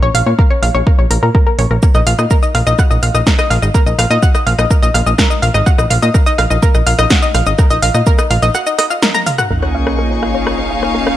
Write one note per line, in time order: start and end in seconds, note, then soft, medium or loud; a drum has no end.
0.03 0.10 A#1 medium
0.03 0.08 C#5 loud
0.15 0.22 A#1 medium
0.15 0.18 F5 loud
0.15 open hi-hat loud
0.26 0.34 A#2 medium
0.26 0.35 C#5 medium
0.39 0.44 A#4 loud
0.39 kick loud
0.51 0.56 C#5 medium
0.63 0.70 A#1 medium
0.63 0.66 F5 loud
0.63 open hi-hat loud
0.75 0.82 A#1 medium
0.75 0.78 C#5 loud
0.87 0.90 A#4 medium
0.87 kick loud
0.99 1.06 A#1 medium
0.99 1.04 C#5 medium
1.11 1.18 A#1 medium
1.11 1.14 A#4 medium
1.11 open hi-hat loud
1.23 1.30 A#2 medium
1.23 1.31 A#4 medium
1.35 1.40 A#4 medium
1.35 kick loud
1.47 1.52 A#4 medium
1.59 1.66 A#1 loud
1.59 1.64 C#5 medium
1.59 open hi-hat medium
1.71 1.78 A#1 medium
1.71 1.76 A#4 medium
1.83 1.86 A#4 medium
1.83 kick loud
1.83 shaker medium
1.95 2.02 A#1 medium
1.95 2.00 D#5 loud
1.95 cross-stick medium
1.95 shaker soft
2.07 2.14 A#1 medium
2.07 2.10 F5 loud
2.07 open hi-hat loud
2.07 shaker soft
2.19 2.26 A#2 medium
2.19 2.27 D#5 medium
2.19 cross-stick medium
2.19 shaker soft
2.31 2.36 A#4 loud
2.31 kick loud
2.31 shaker medium
2.43 2.48 D#5 medium
2.43 shaker soft
2.55 2.62 A#1 medium
2.55 2.58 F5 loud
2.55 cross-stick medium
2.55 open hi-hat medium
2.67 2.74 A#1 medium
2.67 2.70 D#5 loud
2.67 shaker soft
2.79 2.84 F#5 loud
2.79 kick loud
2.79 cross-stick medium
2.79 shaker medium
2.91 2.98 A#1 medium
2.91 2.96 D#5 medium
2.91 shaker soft
3.03 3.10 A#1 medium
3.03 3.08 F5 medium
3.03 open hi-hat loud
3.03 shaker soft
3.15 3.22 A#1 medium
3.15 3.23 D#5 loud
3.15 cross-stick medium
3.15 shaker soft
3.27 3.30 A#4 medium
3.27 kick loud
3.27 snare loud
3.27 shaker medium
3.39 3.44 D#5 loud
3.39 cross-stick medium
3.39 shaker soft
3.50 3.58 A#1 loud
3.50 3.54 F5 loud
3.50 open hi-hat medium
3.50 shaker soft
3.62 3.70 G#1 medium
3.62 3.71 D#5 medium
3.62 shaker soft
3.74 3.80 A#4 loud
3.74 kick loud
3.74 cross-stick medium
3.74 shaker medium
3.86 3.94 A#1 medium
3.86 3.92 D#5 medium
3.86 shaker soft
3.99 4.06 A#1 medium
3.99 4.02 F5 loud
3.99 cross-stick medium
3.99 open hi-hat loud
3.99 shaker soft
4.11 4.18 A#2 medium
4.11 4.14 D#5 loud
4.11 shaker soft
4.23 4.28 F#5 loud
4.23 kick loud
4.23 shaker medium
4.35 4.40 D#5 medium
4.35 cross-stick medium
4.35 shaker soft
4.47 4.54 A#1 loud
4.47 4.52 F5 medium
4.47 open hi-hat medium
4.59 4.66 A#1 medium
4.59 4.67 D#5 loud
4.59 cross-stick medium
4.59 shaker soft
4.71 4.74 A#4 medium
4.71 kick loud
4.71 shaker medium
4.83 4.90 A#1 medium
4.83 4.88 D#5 medium
4.83 shaker soft
4.94 5.02 A#1 loud
4.94 4.98 F5 loud
4.94 cross-stick medium
4.94 open hi-hat loud
4.94 shaker soft
5.07 5.14 A#1 medium
5.07 5.15 D#5 medium
5.07 shaker soft
5.18 5.24 A#4 loud
5.18 kick loud
5.18 cross-stick medium
5.18 snare loud
5.18 shaker medium
5.30 5.36 D#5 medium
5.30 shaker soft
5.42 5.50 A#1 medium
5.42 5.46 F5 loud
5.42 open hi-hat medium
5.42 shaker soft
5.54 5.62 G#1 medium
5.54 5.58 D#5 loud
5.54 cross-stick soft
5.54 shaker soft
5.66 5.72 F#5 loud
5.66 kick loud
5.66 shaker medium
5.78 5.86 A#1 medium
5.78 5.84 D#5 medium
5.78 cross-stick medium
5.78 shaker soft
5.90 5.98 A#1 medium
5.90 5.96 F5 medium
5.90 open hi-hat loud
5.90 shaker soft
6.02 6.10 A#2 medium
6.02 6.11 D#5 loud
6.02 shaker soft
6.14 6.18 A#4 medium
6.14 kick loud
6.14 cross-stick medium
6.14 shaker medium
6.26 6.32 D#5 loud
6.26 shaker soft
6.38 6.46 A#1 medium
6.38 6.42 F5 loud
6.38 cross-stick medium
6.38 open hi-hat medium
6.50 6.58 A#1 medium
6.50 6.59 D#5 medium
6.50 shaker soft
6.62 6.68 A#4 loud
6.62 kick loud
6.62 shaker medium
6.75 6.82 A#1 medium
6.75 6.80 D#5 medium
6.75 cross-stick soft
6.75 shaker soft
6.87 6.94 A#1 loud
6.87 6.90 F5 loud
6.87 open hi-hat loud
6.87 shaker soft
6.99 7.06 A#1 medium
6.99 7.02 D#5 loud
6.99 cross-stick medium
6.99 shaker soft
7.10 7.16 F#5 loud
7.10 kick loud
7.10 snare loud
7.10 shaker medium
7.22 7.28 D#5 medium
7.22 shaker soft
7.34 7.42 A#1 medium
7.34 7.40 F5 medium
7.34 cross-stick soft
7.34 open hi-hat medium
7.34 shaker soft
7.46 7.54 G#1 medium
7.46 7.55 D#5 loud
7.46 shaker soft
7.58 7.62 A#4 medium
7.58 kick loud
7.58 cross-stick medium
7.58 shaker medium
7.70 7.78 A#1 medium
7.70 7.76 D#5 loud
7.70 shaker soft
7.82 7.90 A#1 medium
7.82 7.86 F5 loud
7.82 open hi-hat loud
7.82 shaker soft
7.94 8.02 A#2 medium
7.94 8.03 D#5 medium
7.94 cross-stick soft
7.94 shaker soft
8.07 8.12 A#4 loud
8.07 kick loud
8.07 shaker medium
8.19 8.24 D#5 medium
8.19 cross-stick medium
8.19 shaker soft
8.30 8.38 A#1 medium
8.30 8.34 F5 loud
8.30 open hi-hat medium
8.30 shaker soft
8.42 8.50 A#1 medium
8.42 8.46 D#5 loud
8.42 shaker soft
8.55 8.60 F#5 loud
8.55 cross-stick soft
8.55 shaker medium
8.67 8.72 D#5 medium
8.67 shaker soft
8.78 8.87 D#5 loud
8.78 cross-stick medium
8.78 open hi-hat loud
8.78 shaker soft
8.90 8.96 F5 medium
8.90 shaker soft
9.02 9.08 A#4 medium
9.02 snare loud
9.02 high tom medium
9.02 shaker medium
9.14 9.23 A#5 loud
9.14 cross-stick medium
9.14 high tom medium
9.14 shaker soft
9.26 9.35 F5 medium
9.26 open hi-hat medium
9.26 mid tom medium
9.26 shaker soft
9.38 9.44 F#5 loud
9.38 cross-stick medium
9.38 mid tom medium
9.38 shaker soft
9.50 11.17 A#1 medium
9.50 11.17 A#3 medium
9.50 11.17 C#4 medium
9.50 11.17 D#4 medium
9.50 11.17 F4 medium
9.50 9.54 A#4 medium
9.50 sub drop medium
9.63 11.17 G#4 medium
9.63 9.68 C#5 loud
9.63 11.17 C#6 medium
9.63 cross-stick soft
9.75 9.78 F5 loud
9.87 9.95 C#5 medium
9.87 cross-stick medium
9.99 10.04 A#4 loud
10.10 10.16 C#5 medium
10.23 10.26 F5 loud
10.23 11.17 F5 medium
10.23 cross-stick soft
10.35 10.38 C#5 medium
10.46 10.52 A#5 medium
10.46 cross-stick medium
10.58 10.64 C#5 medium
10.71 10.76 F5 medium
10.83 10.91 C#5 loud
10.83 cross-stick medium
10.95 10.98 A#4 medium
11.07 11.12 C#5 loud
11.07 cross-stick medium